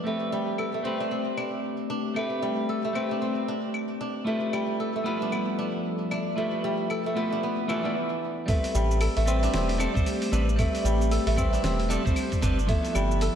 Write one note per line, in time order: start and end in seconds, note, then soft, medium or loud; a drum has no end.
0.00 0.11 G3 medium
0.00 0.81 A3 medium
0.00 0.91 B3 medium
0.00 1.00 D4 medium
0.00 1.76 A4 medium
0.00 7.95 B4 medium
0.00 1.06 E5 medium
0.05 4.27 A3 medium
0.05 0.74 A3 medium
0.05 0.82 C4 medium
0.05 0.83 G4 medium
0.05 0.83 B4 medium
0.24 4.27 C4 medium
0.32 2.41 G3 medium
0.50 5.85 G4 medium
0.58 1.90 A4 medium
0.58 claves medium
0.74 2.16 A3 medium
0.83 2.13 A3 medium
0.83 2.13 C4 medium
0.83 1.11 C4 medium
0.83 2.14 G4 medium
0.83 2.15 B4 medium
1.00 1.37 D4 medium
1.11 2.91 C4 medium
1.37 1.89 D4 medium
1.37 claves medium
1.90 3.11 D4 medium
2.14 2.92 A3 medium
2.14 2.84 A3 medium
2.14 2.92 C4 medium
2.14 2.93 G4 medium
2.14 claves medium
2.18 2.94 B4 medium
2.42 4.32 G3 medium
2.69 4.01 A4 medium
2.85 4.26 A3 medium
2.93 4.23 A3 medium
2.93 4.24 C4 medium
2.93 3.21 C4 medium
2.93 4.25 G4 medium
2.93 claves medium
2.97 4.25 B4 medium
3.11 3.48 D4 medium
3.22 5.02 C4 medium
3.48 4.00 D4 medium
3.74 claves medium
4.01 5.21 D4 medium
4.24 7.96 G3 medium
4.24 5.02 A3 medium
4.24 4.95 A3 medium
4.24 5.03 E4 medium
4.24 5.03 F4 medium
4.24 5.04 G4 medium
4.24 5.04 B4 medium
4.40 7.96 F3 medium
4.53 6.63 G3 medium
4.53 claves medium
4.61 7.95 A4 medium
4.61 7.95 E5 medium
4.80 6.12 A4 medium
4.96 6.37 A3 medium
5.04 6.34 A3 medium
5.04 5.32 B3 medium
5.04 6.34 E4 medium
5.04 6.35 F4 medium
5.04 6.35 G4 medium
5.04 6.36 B4 medium
5.22 5.58 D4 medium
5.32 7.16 B3 medium
5.32 claves medium
5.59 6.11 D4 medium
6.11 7.32 D4 loud
6.11 claves medium
6.35 7.13 A3 medium
6.35 7.06 A3 medium
6.35 7.13 E4 medium
6.35 7.14 F4 medium
6.35 7.14 G4 medium
6.35 7.15 B4 medium
6.64 8.53 G3 medium
6.90 8.22 A4 medium
6.90 claves medium
7.06 8.48 A3 medium
7.15 7.66 A3 medium
7.15 7.43 B3 medium
7.15 7.67 E4 medium
7.15 7.67 F4 medium
7.15 7.67 G4 medium
7.15 7.67 B4 medium
7.32 9.00 D4 medium
7.43 7.85 B3 medium
7.68 8.53 E3 medium
7.68 7.80 A3 medium
7.68 7.81 E4 medium
7.68 7.81 F4 medium
7.68 7.81 G4 medium
7.68 7.81 A4 medium
7.68 claves medium
7.83 7.95 A3 medium
7.83 9.34 B3 medium
7.83 7.95 E4 medium
7.83 7.95 F4 medium
7.83 7.95 G4 medium
7.83 7.96 D5 medium
8.46 9.23 G3 medium
8.46 9.16 A3 medium
8.46 12.69 A3 loud
8.46 9.24 C4 medium
8.46 kick loud
8.46 open hi-hat medium
8.46 cabasa soft
8.50 9.25 B4 medium
8.64 13.35 G4 medium
8.64 open hi-hat soft
8.64 cabasa soft
8.75 9.08 A1 loud
8.75 10.84 G3 medium
8.75 cabasa medium
8.91 cabasa soft
9.00 12.69 C4 medium
9.00 10.33 A4 medium
9.00 open hi-hat medium
9.00 cabasa soft
9.00 claves medium
9.17 9.47 A1 medium
9.17 10.58 A3 medium
9.17 open hi-hat soft
9.26 9.77 G3 medium
9.26 9.77 C4 medium
9.26 9.53 C4 medium
9.26 9.78 B4 medium
9.26 cabasa medium
9.43 9.80 D4 loud
9.43 open hi-hat soft
9.43 cabasa soft
9.53 9.87 E1 medium
9.53 11.34 C4 medium
9.53 snare medium
9.53 open hi-hat medium
9.53 cabasa soft
9.69 open hi-hat soft
9.78 9.91 G3 medium
9.78 9.91 C4 medium
9.78 10.32 D4 loud
9.78 9.92 A4 loud
9.78 cabasa medium
9.78 claves medium
9.94 10.02 A1 medium
9.94 10.29 G3 medium
9.94 10.29 C4 medium
9.94 10.30 C5 loud
9.94 kick loud
9.94 cabasa soft
10.06 open hi-hat medium
10.06 cabasa soft
10.22 open hi-hat soft
10.22 cabasa soft
10.31 10.65 A1 medium
10.31 10.47 G3 medium
10.31 10.48 C4 medium
10.31 11.52 D4 loud
10.31 10.48 B4 medium
10.31 cabasa medium
10.49 cabasa soft
10.56 11.34 G3 medium
10.56 11.26 A3 medium
10.56 11.35 C4 medium
10.56 11.35 B4 medium
10.56 kick loud
10.56 open hi-hat medium
10.56 cabasa soft
10.56 claves medium
10.75 open hi-hat soft
10.75 cabasa soft
10.84 11.18 A1 loud
10.84 12.74 G3 medium
10.84 cabasa medium
11.01 cabasa soft
11.11 12.43 A4 medium
11.11 open hi-hat medium
11.11 cabasa soft
11.26 11.58 A1 medium
11.26 12.68 A3 medium
11.26 open hi-hat soft
11.36 11.87 G3 medium
11.36 11.88 C4 medium
11.36 11.63 C4 loud
11.36 11.88 B4 medium
11.36 kick medium
11.36 cabasa medium
11.36 claves medium
11.53 11.89 D4 medium
11.53 open hi-hat soft
11.53 cabasa soft
11.63 11.97 E1 medium
11.63 13.35 C4 medium
11.63 snare medium
11.63 open hi-hat medium
11.63 cabasa soft
11.80 open hi-hat soft
11.89 12.01 G3 loud
11.89 12.02 C4 medium
11.89 12.42 D4 loud
11.89 12.02 A4 loud
11.89 cabasa medium
12.05 12.13 A1 medium
12.05 12.40 G3 loud
12.05 12.40 C4 medium
12.05 12.40 C5 loud
12.05 kick loud
12.05 cabasa soft
12.16 open hi-hat medium
12.16 cabasa soft
12.16 claves medium
12.32 kick medium
12.32 open hi-hat soft
12.32 cabasa soft
12.41 12.76 G1 medium
12.41 12.58 G3 medium
12.41 12.58 C4 medium
12.41 13.35 D4 loud
12.41 12.59 B4 loud
12.41 kick loud
12.41 cabasa medium
12.59 cabasa soft
12.66 13.35 F3 medium
12.66 13.35 G3 medium
12.66 13.35 A3 medium
12.66 13.35 B3 medium
12.66 13.35 E4 medium
12.66 13.35 A4 medium
12.66 kick loud
12.66 open hi-hat medium
12.66 cabasa soft
12.76 13.35 F3 medium
12.85 open hi-hat soft
12.85 cabasa soft
12.95 13.28 G1 loud
12.95 13.35 G3 loud
12.95 cabasa medium
12.95 claves medium
13.11 cabasa soft
13.21 13.35 A4 medium
13.21 open hi-hat medium
13.21 cabasa soft